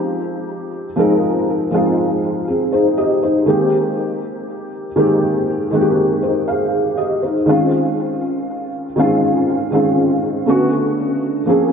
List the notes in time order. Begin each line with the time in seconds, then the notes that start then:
Already playing: F3 G#3 C4 D#4 G4 G#4
0.96 F3 G#3 C4 D#4 A#4
1.71 F3 G#3 C4 D#4 F4
2.48 C4 G#4
2.73 D#4 C5
2.98 G4 D#5
3.23 D#4 C5
3.46 D#3 G#3 A#3 C4 G4
4.96 D#3 G#3 A#3 C4 G4
5.71 D#3 G#3 A#3 C4 F#4
5.81 G4
6.23 D#4 C5
6.48 G#4 F5
6.97 G4 D#5
7.22 D#4 C5
7.46 D#3 G#3 C4 C#4 F4
8.96 D#3 G#3 C4 C#4 F4
9.71 D#3 G#3 C4 C#4 F4
10.46 C#3 A3 B3 C#4 F#4
10.52 D3
11.46 F3 A#3 C4 C#4 G#4